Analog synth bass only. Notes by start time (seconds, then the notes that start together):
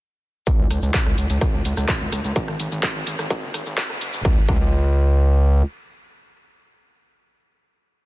0.59 C#2
0.70 C#2
0.83 C#2
1.06 C#2
1.18 C#2
1.30 C#2
1.53 C#2
1.65 C#2
1.77 C#2
2.01 C#2
2.12 C#2
2.24 C#2
2.48 G#1
2.60 G#1
2.72 G#1
2.95 G#1
3.07 G#1
3.19 G#1
3.43 F#1
3.54 G#1
3.66 G#1
3.90 F#1
4.02 F#1
4.14 F#1
4.25 C#2
4.49 C#2